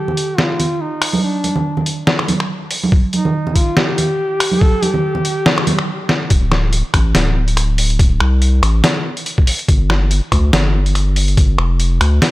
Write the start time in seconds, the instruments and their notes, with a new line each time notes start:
Already playing: duduk G4
0.08 low conga
0.17 closed hi-hat
0.38 duduk F4, snare
0.60 closed hi-hat, low conga
0.81 duduk D#4
1.02 finger snap, open hi-hat
1.13 high conga
1.23 duduk D4
1.44 closed hi-hat, high conga
1.56 low conga
1.77 low conga
1.86 closed hi-hat
2.07 snare
2.19 finger snap
2.28 closed hi-hat, high conga, low conga
2.40 finger snap
2.71 open hi-hat
2.83 high conga
2.92 kick
3.13 duduk D#4, closed hi-hat, high conga
3.25 low conga
3.47 low conga
3.56 duduk F4, kick, closed hi-hat
3.77 duduk G4, snare
3.98 closed hi-hat, low conga
4.40 finger snap, open hi-hat
4.52 high conga
4.61 duduk A4, kick
4.82 duduk G4, closed hi-hat, high conga
4.94 low conga
5.15 low conga
5.25 closed hi-hat
5.46 snare
5.58 finger snap
5.67 closed hi-hat, high conga, low conga
5.79 finger snap
6.09 snare
6.30 sub bass D1, kick, closed hi-hat
6.52 finger snap, snare
6.73 closed hi-hat
6.94 sub bass A1, finger snap, kick, closed hi-hat
7.15 sub bass D1, snare, closed hi-hat
7.48 closed hi-hat
7.57 finger snap, closed hi-hat
7.78 open hi-hat
7.90 closed hi-hat
7.99 kick, closed hi-hat
8.20 sub bass C2, finger snap
8.42 closed hi-hat
8.63 sub bass A1, finger snap, closed hi-hat
8.84 snare, closed hi-hat
9.17 closed hi-hat
9.26 closed hi-hat
9.38 kick
9.47 open hi-hat
9.59 closed hi-hat
9.68 sub bass G1, kick, closed hi-hat
9.90 finger snap, snare
10.11 closed hi-hat
10.32 sub bass D2, finger snap, kick, closed hi-hat
10.53 sub bass G1, snare, closed hi-hat
10.86 closed hi-hat
10.95 finger snap, closed hi-hat
11.16 open hi-hat
11.28 closed hi-hat
11.37 kick, closed hi-hat
11.58 sub bass F1, finger snap
11.80 closed hi-hat
12.01 sub bass D2, finger snap, closed hi-hat
12.22 snare, closed hi-hat